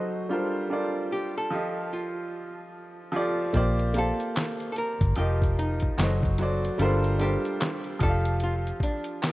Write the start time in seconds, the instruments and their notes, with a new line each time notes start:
Already playing: upright piano F#3 F#4 A4 C5 D#5, hollow-body jazz guitar D#4
0.29 upright piano G3 D4 F4 A4 A#4 C5, hollow-body jazz guitar F4
0.69 upright piano G3 D4 F4 A4 A#4 D5
1.12 hollow-body jazz guitar G4
1.38 hollow-body jazz guitar A4
1.50 upright piano F3 F4 G4 A4 D#5
1.93 hollow-body jazz guitar F4
3.12 upright piano F3 F4 G4 A4
3.16 upright piano D5
3.53 fingered electric bass A#1, upright piano A#3 F4 G4 C5 D5, kick, closed hi-hat
3.79 closed hi-hat
3.94 upright piano A#3 F4 G4 C5 F5, closed hi-hat
3.99 hollow-body jazz guitar A4
4.20 closed hi-hat
4.36 snare, clap, closed hi-hat
4.60 closed hi-hat
4.72 hollow-body jazz guitar A4, closed hi-hat
4.78 hollow-body jazz guitar A#4
5.01 fingered electric bass G1, kick, closed hi-hat
5.16 fingered electric bass F1, upright piano F3 F4 G4 A#4 D#5, hollow-body jazz guitar G4, closed hi-hat
5.42 kick, closed hi-hat
5.59 hollow-body jazz guitar D#4, closed hi-hat
5.80 kick, closed hi-hat
5.97 fingered electric bass F#1, upright piano F#3 F#4 A4 C5 D#5, snare, clap, closed hi-hat
6.23 kick, closed hi-hat
6.38 upright piano F#3 F#4 A4 C5, closed hi-hat
6.42 upright piano D5
6.65 closed hi-hat
6.78 fingered electric bass G1, upright piano G3 D4 F4 A4 A#4 C5, closed hi-hat
7.04 closed hi-hat
7.18 upright piano G3 D4 F4 A4 A#4, hollow-body jazz guitar G4, closed hi-hat
7.22 upright piano C5
7.45 closed hi-hat
7.61 snare, clap, closed hi-hat
7.84 closed hi-hat
7.99 fingered electric bass F1, upright piano F3 F4 G4 A4 D5, hollow-body jazz guitar A4, kick, closed hi-hat
8.09 upright piano F5
8.25 closed hi-hat
8.40 hollow-body jazz guitar F4, closed hi-hat
8.67 closed hi-hat
8.80 hollow-body jazz guitar D4, kick, closed hi-hat
9.04 closed hi-hat
9.23 snare, clap, closed hi-hat